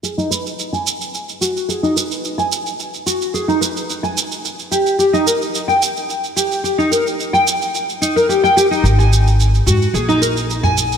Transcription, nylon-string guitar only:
\new Staff \with { instrumentName = "Nylon-string guitar" } { \time 4/4 \key gis \minor \tempo 4 = 109 gis'16 dis'16 b'16 r8 gis''16 r4 fis'8 gis'16 dis'16 b'16 r16 | r16 gis''16 r4 fis'8 gis'16 dis'16 b'16 r8 gis''16 r8 | r8 g'8 g'16 dis'16 ais'16 r8 g''16 r4 g'8 | g'16 dis'16 ais'16 r8 g''16 r4 dis'16 ais'16 g'16 g''16 g'16 dis'16 |
r16 gis''16 r4 fis'8 gis'16 dis'16 ais'16 r8 gis''16 r8 | }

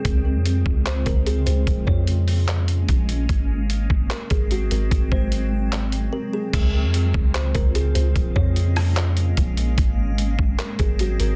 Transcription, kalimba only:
\new Staff \with { instrumentName = "Kalimba" } { \time 4/4 \key des \major \tempo 4 = 148 r2 c''8 bes'8 aes'8 c''8 | r8 des''8 r2. | r2 bes'8 aes'8 ges'8 bes'8 | r8 c''8 r2 bes'8 aes'8 |
r2 c''8 bes'8 aes'8 c''8 | r8 des''8 r2. | r2 bes'8 aes'8 ges'8 bes'8 | }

